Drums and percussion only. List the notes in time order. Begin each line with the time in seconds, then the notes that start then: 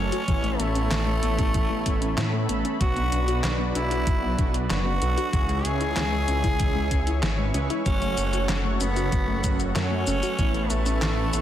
0.12 closed hi-hat
0.28 kick, closed hi-hat
0.44 closed hi-hat
0.60 closed hi-hat
0.75 closed hi-hat
0.91 snare, clap, closed hi-hat
1.23 closed hi-hat
1.39 kick, closed hi-hat
1.54 kick, closed hi-hat
1.86 kick, closed hi-hat
2.02 closed hi-hat
2.18 snare, clap, closed hi-hat
2.49 closed hi-hat
2.65 closed hi-hat
2.81 kick, closed hi-hat
2.96 closed hi-hat
3.12 closed hi-hat
3.28 closed hi-hat
3.44 snare, clap, closed hi-hat
3.75 closed hi-hat
3.91 closed hi-hat
4.07 kick, closed hi-hat
4.38 kick, closed hi-hat
4.54 closed hi-hat
4.70 snare, clap, closed hi-hat
5.02 closed hi-hat
5.18 closed hi-hat
5.33 kick, closed hi-hat
5.49 closed hi-hat
5.65 closed hi-hat
5.81 closed hi-hat
5.96 snare, clap, closed hi-hat
6.28 closed hi-hat
6.44 kick, closed hi-hat
6.60 kick, closed hi-hat
6.91 kick, closed hi-hat
7.07 closed hi-hat
7.23 snare, clap, closed hi-hat
7.54 closed hi-hat
7.70 closed hi-hat
7.86 kick, closed hi-hat, shaker
8.02 closed hi-hat
8.18 closed hi-hat, shaker
8.33 closed hi-hat, shaker
8.49 snare, clap, closed hi-hat, shaker
8.81 closed hi-hat, shaker
8.96 closed hi-hat, shaker
9.12 kick, closed hi-hat, shaker
9.44 kick, closed hi-hat, shaker
9.60 closed hi-hat, shaker
9.75 snare, clap, closed hi-hat, shaker
10.07 closed hi-hat, shaker
10.23 closed hi-hat, shaker
10.39 kick, closed hi-hat, shaker
10.54 closed hi-hat
10.70 closed hi-hat, shaker
10.86 closed hi-hat, shaker
11.02 snare, clap, closed hi-hat, shaker
11.33 closed hi-hat, shaker